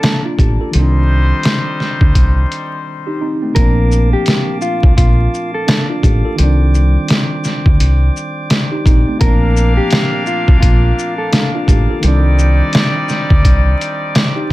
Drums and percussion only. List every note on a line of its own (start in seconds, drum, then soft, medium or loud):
0.03 snare loud
0.03 closed hi-hat medium
0.39 kick medium
0.39 closed hi-hat soft
0.73 closed hi-hat medium
1.43 snare loud
1.43 closed hi-hat medium
1.80 snare soft
2.01 kick loud
2.15 kick medium
2.15 closed hi-hat loud
2.52 closed hi-hat medium
3.56 kick loud
3.56 closed hi-hat medium
3.92 shaker medium
4.26 snare loud
4.26 closed hi-hat medium
4.61 shaker medium
4.83 kick loud
4.98 kick medium
4.98 closed hi-hat loud
5.34 shaker medium
5.68 snare loud
5.68 closed hi-hat medium
6.03 kick medium
6.03 closed hi-hat soft
6.03 shaker soft
6.38 closed hi-hat medium
6.74 shaker medium
7.08 snare loud
7.08 closed hi-hat medium
7.44 snare soft
7.44 shaker medium
7.66 kick loud
7.80 closed hi-hat medium
8.17 shaker medium
8.50 snare loud
8.50 closed hi-hat medium
8.86 kick loud
8.86 closed hi-hat soft
8.86 shaker soft
9.21 kick loud
9.21 closed hi-hat medium
9.57 shaker medium
9.91 snare loud
9.91 closed hi-hat medium
10.26 shaker medium
10.48 kick loud
10.62 kick loud
10.62 closed hi-hat loud
10.99 shaker medium
11.33 snare loud
11.33 closed hi-hat medium
11.68 kick medium
11.68 closed hi-hat soft
11.68 shaker soft
12.03 closed hi-hat medium
12.39 shaker medium
12.73 snare loud
12.73 closed hi-hat medium
13.09 snare soft
13.09 shaker medium
13.30 kick loud
13.45 kick medium
13.45 closed hi-hat loud
13.81 closed hi-hat medium
13.81 shaker medium
14.15 snare loud
14.15 closed hi-hat medium